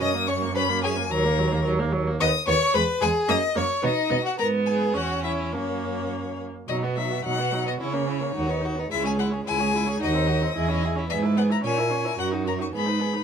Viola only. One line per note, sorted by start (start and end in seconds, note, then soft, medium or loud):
0.01 0.16 C#4 medium
0.14 0.29 A#3 medium
0.28 0.43 C#4 medium
0.42 0.55 A#3 medium
0.56 0.71 C#4 medium
0.69 0.84 A#3 medium
0.83 0.98 C#4 medium
0.96 1.10 A#3 medium
1.11 1.26 F#3 medium
1.24 1.40 A#3 medium
1.39 1.54 F#3 medium
1.52 1.64 A#3 medium
1.64 1.81 F#3 medium
1.79 1.94 A#3 medium
1.93 2.08 F#3 medium
2.07 2.19 A#3 medium
2.20 2.28 B3 medium
2.47 2.55 B3 medium
2.74 2.82 G#3 medium
3.01 3.09 G#3 medium
3.29 3.37 A#3 medium
3.55 3.63 A#3 medium
3.82 3.90 B3 medium
4.10 4.18 B3 medium
4.37 4.96 B3 medium
4.94 5.54 C#4 medium
5.53 6.48 A#3 medium
6.69 6.84 F#3 medium
6.83 6.98 B3 medium
6.97 7.11 F#3 medium
7.10 7.24 B3 medium
7.25 7.40 F#3 medium
7.38 7.53 B3 medium
7.52 7.67 F#3 medium
7.65 7.79 B3 medium
7.79 7.94 C#4 medium
7.93 8.09 A#3 medium
8.08 8.22 C#4 medium
8.21 8.33 A#3 medium
8.34 8.49 D#4 medium
8.47 8.63 B3 medium
8.61 8.77 D#4 medium
8.76 8.89 B3 medium
8.90 9.05 G#3 medium
9.03 9.19 C#4 medium
9.17 9.32 G#3 medium
9.31 9.44 C#4 medium
9.45 9.61 G#3 medium
9.59 9.74 C#4 medium
9.73 9.88 G#3 medium
9.86 9.99 C#4 medium
10.00 10.15 D#4 medium
10.14 10.28 C4 medium
10.27 10.44 D#4 medium
10.42 10.55 C4 medium
10.55 10.70 E4 medium
10.68 10.84 C#4 medium
10.82 10.97 E4 medium
10.96 11.08 C#4 medium
11.09 11.24 B3 medium
11.23 11.38 E4 medium
11.37 11.51 B3 medium
11.50 11.63 E4 medium
11.64 11.79 C#4 medium
11.78 11.92 E4 medium
11.90 12.06 C#4 medium
12.04 12.17 E4 medium
12.18 12.33 F#4 medium
12.32 12.46 D#4 medium
12.45 12.60 F#4 medium
12.59 12.72 D#4 medium
12.73 12.87 B3 medium
12.86 13.01 D#4 medium
13.00 13.15 B3 medium
13.14 13.24 D#4 medium